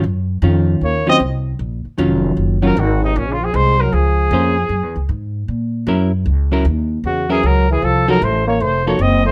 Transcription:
X:1
M:4/4
L:1/8
Q:"Swing" 1/4=154
K:Ebdor
V:1 name="Trumpet"
z4 d e z2 | z4 z B G E | (3D F A c B A4- | A2 z6 |
z4 G A B A | =A B c d c d e c |]
V:2 name="Hollow-body jazz guitar"
z2 [E,DF]3 [E,G,DF] z2 | z2 [E,G,DF]3 [E,G,DF] z2 | z6 [B,DAc] z | z6 [G,D_FB] z |
z [G,D_FB] z3 [G,DFB] z2 | z [F,EG=A] z3 [F,EGA] z2 |]
V:3 name="Trombone" clef=bass
z4 B, C z2 | z4 z G, E, C, | (3B,, D, F, A, G, F,4 | z8 |
z4 D, _F, G, F, | F, G, =A, B, A, B, C A, |]
V:4 name="Upright bass" clef=bass
G,,2 F,,2 E,,2 C,,2 | B,,, z F,,,2 G,,,2 A,,,2 | B,,,2 C,,2 D,,2 F,,2 | (3G,, _F,, D,, A,,2 B,,2 G,,2 |
D,,2 E,,2 _F,,2 D,,2 | C,,2 =A,,,2 F,,,2 G,,,2 |]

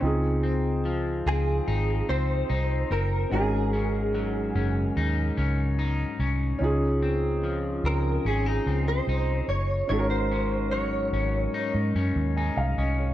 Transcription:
X:1
M:4/4
L:1/16
Q:1/4=73
K:Db
V:1 name="Clean electric guitar"
z6 A4 c4 B2 | A12- A2 z2 | z6 B2 A3 c3 d2 | d c3 d6 z6 |]
V:2 name="Upright piano"
[CEFA]16 | [CDEGB]16 | [DEFA]16 | [DEG=AB]12 _a f e d |]
V:3 name="Clean electric guitar"
z2 C2 F,2 C2 E2 C2 E2 C2 | A,,2 D2 G,2 D2 E2 D2 E2 D2 | z2 C2 F,2 C2 D E C2 E4 | A,,2 D2 G,2 D2 E2 D2 E2 D2 |]
V:4 name="Fingered electric bass" clef=bass
D,,6 D,,2 A,,,2 D,,2 C,,2 G,,,2 | A,,,6 G,,,2 E,,2 D,,4 C,,2 | D,,6 D,,2 A,,,2 D,,2 C,,2 G,,,2 | A,,,6 A,,,2 z A,, G,, E,,2 C,, C,,2 |]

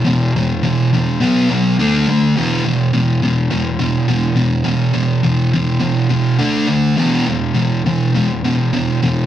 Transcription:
X:1
M:4/4
L:1/8
Q:1/4=104
K:Dmix
V:1 name="Distorted electric guitar" clef=bass
[E,,B,,] [E,,B,,] [E,,B,,] [E,,B,,] [B,,F,B,] [B,,F,] [D,A,D] [D,A,] | [E,,B,,E,] [E,,B,,] [E,,B,,] [E,,B,,] [E,,B,,] [E,,B,,] [E,,B,,] [E,,B,,] | [E,,B,,] [E,,B,,] [E,,B,,] [E,,B,,] [E,,B,,] [E,,B,,] [D,A,D] [D,A,] | [E,,B,,E,] [E,,B,,] [E,,B,,] [E,,B,,] [E,,B,,] [E,,B,,] [E,,B,,] [E,,B,,] |]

